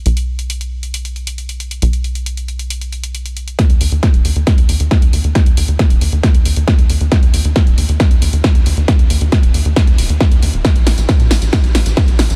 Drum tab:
HH |xx-xxx-xxxxxxxxx|xxxxxxxxxxxxxxxx|xxoxxxoxxxoxxxox|xxoxxxoxxxoxxxox|
TB |----------------|----------------|----------------|----------------|
SD |----------------|----------------|o---o---o---o---|o---o---o---o---|
BD |----------------|----------------|o---o---o---o---|o---o---o---o---|

HH |xxoxxxoxxxoxxxox|xxoxxxoxxxoxxxox|xxoxxxoxxxoxxxox|
TB |----------------|----------------|x-xxx-xxx-xxx-xx|
SD |o---o---o---o---|o---o---o---o---|o-o-o-o-o-o-o-o-|
BD |o---o---o---o---|o---o---o---o---|o---o---o---o---|